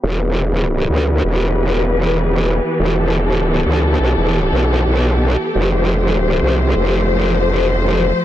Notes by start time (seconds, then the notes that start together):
0.03 E1 E3 B3 G4 B4
0.90 D2
1.24 E1
2.79 E1 A4
3.65 D2
4.00 B1
4.17 E1
4.52 B1
4.86 B1
5.55 F1 F3 A3 C5
6.41 C2
6.76 F1